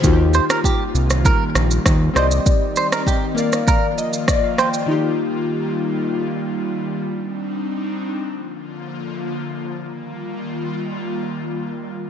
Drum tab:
SH |x-xxx-xxx-xxx-xx|x-xxx-xxx-xxx-xx|----------------|----------------|
SD |---r---r--r-r-r-|---r---r----r-r-|----------------|----------------|
BD |o---o---o---o---|o---o---o---o---|----------------|----------------|

SH |----------------|
SD |----------------|
BD |----------------|